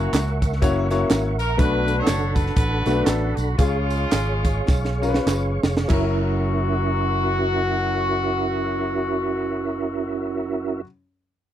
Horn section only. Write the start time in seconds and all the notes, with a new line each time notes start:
Already playing: A#3 C#4 F#4
1.38 A#4
1.58 D4 F#4 B4
1.98 F#4 A4 C#5
2.35 B4
2.55 D4 F#4 B4
3.05 A4
3.35 F#4
3.58 G#3 C#4 F4
5.91 F#4